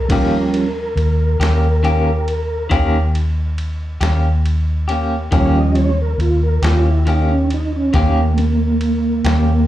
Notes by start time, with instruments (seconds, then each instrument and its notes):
Already playing: fingered electric bass A#1
0.05 tonewheel organ F3 G3 A4
0.10 fingered electric bass D#2, clean electric guitar D#3 A#3 C#4 G4, tonewheel organ C#4 A#4, kick, crash, ride
0.54 ride
0.96 fingered electric bass D#2, ride
1.39 fingered electric bass D#2, clean electric guitar A#3 C#4 G4, snare, ride
1.83 clean electric guitar D#3 A#3 C#4 G4, ride
2.28 ride
2.70 fingered electric bass D#2, clean electric guitar D#3 A#3 C#4 G4, kick, ride
3.15 ride
3.58 ride
4.01 fingered electric bass D#2, clean electric guitar A#3 C#4 G4, snare, ride
4.46 ride
4.88 clean electric guitar A#3 C#4 G4, ride
5.31 fingered electric bass D#2, clean electric guitar D#3 A#3 C#4 G4, tonewheel organ F3 G3 C#4 C#5, kick, ride
5.56 tonewheel organ D#5
5.75 tonewheel organ C#5, ride
6.01 tonewheel organ A#4
6.18 fingered electric bass D#2, tonewheel organ F4, ride
6.43 tonewheel organ A#4
6.62 fingered electric bass D#2, clean electric guitar A#3 C#4 G4, tonewheel organ F4, snare, ride
6.88 tonewheel organ E4
7.06 clean electric guitar D#3 A#3 C#4 G4, ride
7.10 tonewheel organ D#4
7.31 tonewheel organ C#4
7.50 tonewheel organ D#4, ride
7.76 tonewheel organ C#4
7.93 fingered electric bass D#2, clean electric guitar D#3 A#3 C#4 G4, tonewheel organ A#3, kick, snare, ride
8.34 tonewheel organ A3, ride
8.39 tonewheel organ A#3
8.81 ride
9.24 fingered electric bass D#2, clean electric guitar A#3 C#4 G4, snare, ride